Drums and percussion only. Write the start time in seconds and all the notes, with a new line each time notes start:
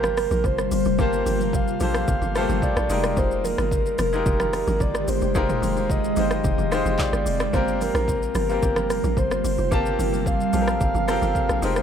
0.03 cross-stick, high conga, shaker
0.17 cross-stick, open hi-hat, shaker
0.31 high conga, shaker
0.44 kick, low conga, shaker
0.58 cross-stick, shaker
0.71 open hi-hat, shaker
0.85 shaker
0.99 kick, low conga, shaker
1.13 shaker
1.26 open hi-hat, high conga, shaker
1.40 high conga, shaker
1.53 kick, low conga, shaker
1.68 shaker
1.80 open hi-hat, high conga, shaker
1.94 cross-stick, shaker
2.08 kick, low conga, shaker
2.22 high conga, shaker
2.35 cross-stick, open hi-hat, shaker
2.49 high conga, shaker
2.62 kick, low conga, shaker
2.77 cross-stick, shaker
2.90 open hi-hat, shaker
3.03 cross-stick, shaker
3.17 kick, low conga, shaker
3.31 shaker
3.44 open hi-hat, high conga, shaker
3.58 cross-stick, high conga, shaker
3.71 kick, low conga, shaker
3.86 shaker
3.98 cross-stick, open hi-hat, high conga, shaker
4.13 shaker
4.26 kick, low conga, shaker
4.40 cross-stick, high conga, shaker
4.53 cross-stick, open hi-hat, shaker
4.67 high conga, shaker
4.80 kick, low conga, shaker
4.95 cross-stick, shaker
5.08 open hi-hat, shaker
5.21 shaker
5.35 kick, low conga, shaker
5.49 mid tom, shaker
5.62 open hi-hat, high conga, shaker
5.77 high conga, shaker
5.90 kick, low conga, shaker
6.04 shaker
6.16 open hi-hat, high conga, shaker
6.31 cross-stick, shaker
6.44 kick, low conga, shaker
6.58 high conga, shaker
6.72 cross-stick, open hi-hat, shaker
6.86 high conga, shaker
6.99 kick, clap, low conga, shaker
7.13 cross-stick, shaker
7.26 open hi-hat, shaker
7.40 cross-stick, shaker
7.53 kick, low conga, shaker
7.68 shaker
7.80 open hi-hat, high conga, shaker
7.95 cross-stick, high conga, shaker
8.08 kick, low conga, shaker
8.23 shaker
8.35 cross-stick, open hi-hat, high conga, shaker
8.49 shaker
8.62 kick, low conga, shaker
8.76 cross-stick, high conga, shaker
8.90 cross-stick, open hi-hat, shaker
9.04 high conga, shaker
9.17 kick, low conga, shaker
9.31 cross-stick, shaker
9.45 open hi-hat, shaker
9.58 shaker
9.71 kick, low conga, shaker
9.86 shaker
9.99 open hi-hat, high conga, shaker
10.13 high conga, shaker
10.26 kick, low conga, shaker
10.41 shaker
10.53 open hi-hat, high conga, shaker
10.68 cross-stick, shaker
10.80 kick, low conga, shaker
10.94 high conga, shaker
11.08 cross-stick, open hi-hat, shaker
11.22 high conga, shaker
11.35 kick, low conga, shaker
11.49 cross-stick, shaker
11.62 open hi-hat, shaker
11.76 cross-stick, shaker